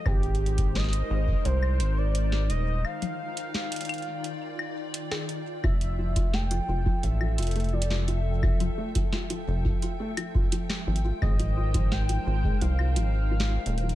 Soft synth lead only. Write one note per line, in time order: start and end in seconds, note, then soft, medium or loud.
0.06 0.77 G4 loud
0.76 1.47 D#5 loud
1.45 1.99 C5 loud
1.98 2.49 D5 loud
2.50 2.86 D#5 loud
2.85 4.94 F5 loud
5.64 6.35 E5 loud
6.34 7.05 G5 loud
7.03 7.75 E5 loud
7.73 8.10 D5 loud
8.08 9.47 E5 loud
11.22 11.93 D#5 loud
11.92 12.63 G5 loud
12.61 13.95 F5 loud